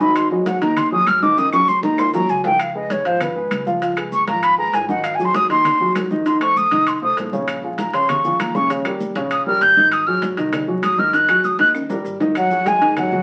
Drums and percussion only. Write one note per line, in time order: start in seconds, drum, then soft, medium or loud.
0.00 high conga medium
0.00 maracas soft
0.16 high conga soft
0.16 high timbale medium
0.16 claves medium
0.16 maracas medium
0.31 high conga soft
0.46 high conga medium
0.46 high timbale medium
0.46 maracas medium
0.61 high conga soft
0.61 high timbale medium
0.61 maracas soft
0.77 high conga soft
0.77 low conga medium
0.77 high timbale medium
0.77 claves medium
0.77 maracas medium
0.92 high conga soft
1.07 high conga medium
1.07 high timbale medium
1.07 claves medium
1.07 maracas medium
1.22 high conga medium
1.22 maracas soft
1.37 high conga soft
1.37 high timbale medium
1.37 maracas medium
1.53 high timbale medium
1.53 claves medium
1.53 maracas medium
1.68 high conga medium
1.68 maracas medium
1.83 high conga medium
1.83 maracas soft
1.98 high conga soft
1.98 low timbale medium
1.98 claves medium
1.98 maracas medium
2.14 low timbale medium
2.14 maracas medium
2.29 high conga soft
2.29 maracas medium
2.44 high conga medium
2.44 low timbale medium
2.44 maracas soft
2.59 high conga soft
2.59 high timbale medium
2.59 claves medium
2.59 maracas medium
2.75 high conga soft
2.90 high conga medium
2.90 high timbale medium
2.90 maracas medium
3.05 high conga soft
3.05 high timbale medium
3.05 maracas soft
3.20 high conga soft
3.20 low conga medium
3.20 high timbale medium
3.20 claves medium
3.20 maracas medium
3.36 high conga soft
3.51 high conga medium
3.51 high timbale medium
3.51 claves medium
3.51 maracas medium
3.67 high conga medium
3.67 maracas soft
3.82 high conga soft
3.82 high timbale medium
3.82 maracas medium
3.97 high conga soft
3.97 high timbale medium
3.97 claves medium
4.12 high conga medium
4.12 maracas medium
4.27 high conga medium
4.27 high timbale medium
4.27 maracas soft
4.43 high timbale medium
4.43 claves medium
4.43 maracas medium
4.58 high conga soft
4.73 high conga soft
4.73 high timbale medium
4.73 low timbale medium
4.73 maracas medium
4.89 high conga medium
4.89 maracas soft
5.04 high conga soft
5.04 high timbale medium
5.04 claves medium
5.04 maracas medium
5.20 high conga soft
5.20 maracas medium
5.34 high conga medium
5.34 high timbale medium
5.34 maracas medium
5.50 high conga soft
5.50 high timbale medium
5.50 maracas soft
5.65 high conga soft
5.65 low conga medium
5.65 high timbale medium
5.65 claves medium
5.65 maracas medium
5.80 high conga soft
5.95 high conga medium
5.95 high timbale medium
5.95 low timbale medium
5.95 claves medium
5.95 maracas medium
6.11 high conga medium
6.11 maracas soft
6.26 high conga soft
6.26 high timbale medium
6.26 maracas medium
6.41 high conga soft
6.41 high timbale medium
6.41 claves medium
6.56 high conga medium
6.56 maracas medium
6.71 high conga medium
6.71 high timbale medium
6.71 maracas soft
6.87 high conga soft
6.87 high timbale medium
6.87 claves medium
6.87 maracas medium
7.03 high conga soft
7.17 high conga soft
7.17 high timbale medium
7.17 low timbale medium
7.17 maracas medium
7.33 high conga medium
7.33 maracas soft
7.48 high conga soft
7.48 high timbale medium
7.48 claves medium
7.48 maracas medium
7.63 high conga soft
7.78 high conga medium
7.78 high timbale medium
7.78 maracas medium
7.94 high conga soft
7.94 high timbale medium
7.94 maracas soft
8.09 high conga soft
8.09 low conga medium
8.09 high timbale medium
8.09 claves medium
8.09 maracas medium
8.24 high conga soft
8.24 low conga medium
8.24 maracas medium
8.40 high conga medium
8.40 high timbale loud
8.40 claves medium
8.40 maracas medium
8.55 high conga medium
8.55 maracas soft
8.70 high conga soft
8.70 high timbale medium
8.70 maracas medium
8.85 high conga soft
8.85 high timbale medium
8.85 claves medium
9.00 high conga medium
9.00 maracas medium
9.15 high conga medium
9.15 high timbale medium
9.15 maracas soft
9.31 high conga soft
9.31 high timbale medium
9.31 claves medium
9.31 maracas medium
9.46 high conga soft
9.61 high conga soft
9.61 high timbale medium
9.61 maracas medium
9.77 high conga medium
9.77 maracas soft
9.91 high conga soft
9.91 high timbale medium
9.91 claves medium
9.91 maracas medium
10.22 high conga medium
10.22 high timbale medium
10.22 maracas medium
10.37 high conga soft
10.37 high timbale medium
10.37 maracas soft
10.53 high conga soft
10.53 low conga medium
10.53 high timbale medium
10.53 claves medium
10.53 maracas medium
10.68 high conga soft
10.83 high conga medium
10.83 high timbale medium
10.83 claves medium
10.83 maracas medium
10.98 high conga medium
10.98 maracas soft
11.13 high conga soft
11.13 high timbale medium
11.13 maracas medium
11.29 high conga soft
11.29 high timbale medium
11.29 claves medium
11.44 high conga medium
11.44 maracas medium
11.59 high conga medium
11.59 high timbale medium
11.59 maracas soft
11.74 high conga soft
11.74 high timbale medium
11.74 claves medium
11.74 maracas medium
11.89 high conga soft
11.89 low timbale medium
11.89 maracas medium
12.05 high conga soft
12.05 maracas medium
12.20 high conga medium
12.20 low timbale medium
12.20 maracas soft
12.35 high conga soft
12.35 high timbale medium
12.35 claves medium
12.35 maracas medium
12.51 high conga soft
12.51 maracas medium
12.66 high conga medium
12.66 high timbale medium
12.66 maracas medium
12.81 high conga soft
12.81 high timbale medium
12.81 maracas soft
12.97 high conga soft
12.97 low conga medium
12.97 high timbale medium
12.97 claves medium
12.97 maracas medium
13.12 high conga soft
13.12 low conga medium